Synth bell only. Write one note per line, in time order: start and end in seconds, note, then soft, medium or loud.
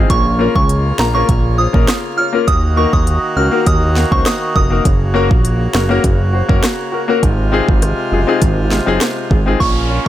0.10 0.23 C#6 loud
0.56 0.67 C#6 medium
0.99 1.12 A#5 medium
1.15 1.26 C#6 medium
1.58 1.71 D#6 medium
2.18 2.31 F6 medium
2.47 2.61 D#6 loud
2.77 2.90 C#6 medium
2.93 3.18 D#6 medium
3.37 3.61 F6 medium
3.67 3.80 D#6 medium
4.12 4.23 C#6 medium
4.26 4.39 D#6 medium
4.56 4.69 D#6 medium
9.60 9.73 C#6 medium